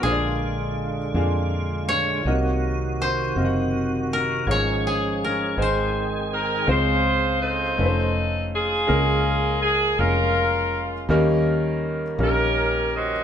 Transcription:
<<
  \new Staff \with { instrumentName = "Koto" } { \time 6/8 \key bes \minor \tempo 4. = 54 aes'2 r8 des''8~ | des''4 c''4. bes'8 | des''8 aes'8 bes'8 c''4 r8 | r2. |
r2. | r2. | }
  \new Staff \with { instrumentName = "Saxophone section" } { \time 6/8 \key bes \minor << { r2. | r2. | r2 r8 bes'8 | c''4 c''4 r8 aes'8~ |
aes'4 aes'8 bes'4 r8 | r4. bes'4 ees''8 | } \\ { r2. | r2. | r2. | <f' aes'>4 <ees' a'>4. f'8~ |
f'4 r8 f'4. | r4. <des' g'>4 <ges' c''>8 | } >> }
  \new Staff \with { instrumentName = "Grand piano" } { \time 6/8 \key bes \minor <bes d' f' aes' c'' d''>4~ <bes d' f' aes' c'' d''>16 r16 <bes d' f' aes' f''>4~ <bes d' f' aes' f''>16 r16 | <bes ees' ges' bes' ees''>4~ <bes ees' ges' bes' ees''>16 r16 <c' ees' ges' bes' f'' ges''>4~ <c' ees' ges' bes' f'' ges''>16 r16 | <f' aes' des''>4~ <f' aes' des''>16 r16 <ees' aes' c''>4~ <ees' aes' c''>16 r16 | <aes c' des' f' c''>4~ <aes c' des' f' c''>16 r16 <a des' ees' f' ces'' c''>4~ <a des' ees' f' ces'' c''>16 r16 |
<aes bes des' f' bes'>4~ <aes bes des' f' bes'>16 r16 <aes bes des' f' aes'>4~ <aes bes des' f' aes'>16 r16 | <g bes des' ees' bes'>4~ <g bes des' ees' bes'>16 r16 <g bes des' ees' bes'>4~ <g bes des' ees' bes'>16 r16 | }
  \new Staff \with { instrumentName = "Grand piano" } { \clef bass \time 6/8 \key bes \minor bes,4. r4. | c4. r4. | aes,4. aes,4. | des4. r4. |
des4. r4. | ees4. r4. | }
  \new Staff \with { instrumentName = "Tonewheel organ" } { \time 6/8 \key bes \minor f'2. | ges'2. | aes'2. | r2. |
r2. | r2. | }
  \new Staff \with { instrumentName = "Tonewheel organ" } { \clef bass \time 6/8 \key bes \minor <d aes>2. | <c ees>2. | <f aes des'>4. <ees aes c'>4. | r2. |
r2. | r2. | }
  \new Staff \with { instrumentName = "Fingered electric bass" } { \clef bass \time 6/8 \key bes \minor bes,,4. f,4. | c,4. ges,,4. | aes,,4. aes,,4. | des,4. f,,4. |
des,4. f,,4. | ees,4. bes,,4. | }
>>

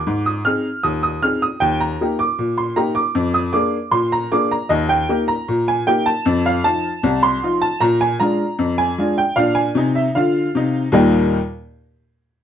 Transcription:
\new Staff \with { instrumentName = "Upright piano" } { \time 2/4 \key ees \major \tempo 4 = 77 << { d'''16 ees'''16 f'''8 ees'''16 ees'''16 f'''16 ees'''16 | g''16 bes''8 d'''8 c'''16 bes''16 d'''16~ | d'''16 ees'''16 d'''8 c'''16 bes''16 d'''16 bes''16 | ees''16 g''8 bes''8 aes''16 g''16 a''16~ |
a''16 f''16 a''8. c'''8 a''16 | bes''16 aes''16 bes''8. aes''8 g''16 | f''16 aes''8 fes''16 f''4 | <ees, bes, g bes ees' g' ees''>8 r4. | } \\ { aes,8 <c' ees' aes'>8 ees,8 <c' ees' aes'>8 | ees,8 <bes ees' g'>8 bes,8 <bes ees' g'>8 | f,8 <bes d' aes'>8 bes,8 <bes d' aes'>8 | ees,8 <bes ees' g'>8 bes,8 <bes ees' g'>8 |
f,8 <f ees' f'>8 c,8 <f ees' f'>8 | bes,8 <aes d' f'>8 f,8 <aes d' f'>8 | <bes, d'>8 <c ees'>8 <d f'>8 <c ees'>8 | r2 | } >> }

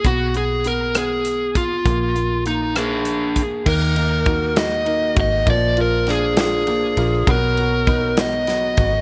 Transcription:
<<
  \new Staff \with { instrumentName = "Electric slide guitar" } { \time 6/8 \key ees \minor \tempo 4. = 66 ges'8 aes'8 bes'8 aes'4 f'8~ | f'4 ees'8 <d' aes'>4. | bes'4. ees''4 ees''8 | d''8 bes'8 aes'8 aes'4. |
bes'4. dis''4. | }
  \new Staff \with { instrumentName = "Felt piano" } { \time 6/8 \key ees \minor ces'8 ces'8 ces'8 ces'4. | bes8 bes8 bes8 bes4. | ees8 bes8 ees'8 ges'8 ees'8 ges'8 | bes8 f'8 bes8 f'8 bes8 f'8 |
b8 fis'8 b8 fis'8 b8 fis'8 | }
  \new Staff \with { instrumentName = "Steel-string acoustic guitar" } { \time 6/8 \key ees \minor r2. | r2. | bes8 ees'8 ges'8 ees'8 bes8 ees'8 | f8 bes8 d'8 bes8 f8 bes8 |
fis8 b8 dis'8 b8 fis8 b8 | }
  \new Staff \with { instrumentName = "Fingered electric bass" } { \clef bass \time 6/8 \key ees \minor ces,2. | bes,,2. | ees,2~ ees,8 aes,,8 | bes,,2~ bes,,8 bes,,8 |
b,,2~ b,,8 aes,,8 | }
  \new DrumStaff \with { instrumentName = "Drums" } \drummode { \time 6/8 <hh bd>8 hh8 hh8 <hh ss>8 <hh ss>8 <hh bd>8 | <hh bd>8 hh8 hh8 <hh ss>8 hh8 <hh bd>8 | <cymc bd>8 cymr8 <bd cymr>8 <cymr sn>8 cymr8 <bd cymr>8 | <bd cymr>8 cymr8 <cymr sn>8 <cymr sn>8 cymr8 cymr8 |
<bd cymr>8 cymr8 <bd cymr>8 <cymr sn>8 <cymr sn>8 <bd cymr>8 | }
>>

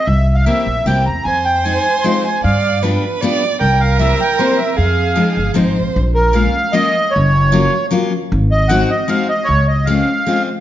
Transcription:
<<
  \new Staff \with { instrumentName = "Accordion" } { \time 3/4 \key f \minor \tempo 4 = 153 e''8. f''16 e''4 g''8 bes''8 | aes''8 g''8 aes''4 c'''8 aes''8 | f''4 r2 | g''8 f''8 e''8 g''8 c''8 e''8 |
f''2 r4 | \key bes \minor r8 bes'8 f''4 ees''4 | des''2 r4 | r8 ees''8 ges''8 ees''8 f''8 ees''8 |
des''8 ees''8 f''4. r8 | }
  \new Staff \with { instrumentName = "Violin" } { \time 3/4 \key f \minor r2. | c''2. | d''4 b'4 d''4 | bes'2. |
aes'2 c''4 | \key bes \minor r2. | r2. | r2. |
r2. | }
  \new Staff \with { instrumentName = "Steel-string acoustic guitar" } { \time 3/4 \key f \minor r4 <bes c' e' g'>8 r8 <bes c' e' g'>8 r8 | r4 <aes c' ees' f'>8 r8 <aes c' ees' f'>8 r8 | r4 <g b d' f'>8 r8 <g b d' f'>8 r8 | r4 <g bes c' e'>8 r8 <g bes c' e'>8 r8 |
r4 <f aes c' ees'>8 r8 <f aes c' ees'>8 r8 | \key bes \minor r4 <aes bes des' f'>8 r8 <aes bes des' f'>8 r8 | r4 <ges bes des' f'>8 r8 <ges bes des' f'>8 r8 | r4 <aes c' ees' ges'>8 r8 <aes c' ees' ges'>8 r8 |
r4 <aes c' des' f'>8 r8 <aes c' des' f'>8 r8 | }
  \new Staff \with { instrumentName = "Upright bass" } { \clef bass \time 3/4 \key f \minor c,4. bes,,8 c,8 e,8 | f,2 r4 | g,2 r4 | c,2 r4 |
f,4. g,,8 aes,,8 bes,,8 | \key bes \minor bes,,2 r4 | ges,,2 r4 | aes,,2 r4 |
des,2 r4 | }
>>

